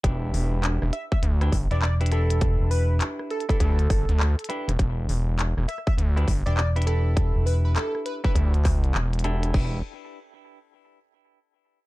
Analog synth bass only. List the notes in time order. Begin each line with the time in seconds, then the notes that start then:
0.04 E1
0.34 E1
0.82 E1
1.23 D2
1.52 G1
3.60 D2
3.90 G1
4.09 D2
4.68 E1
4.79 E1
5.09 E1
5.57 E1
5.98 D2
6.28 G1
8.35 D2
8.76 C#2
8.95 E1
9.54 E1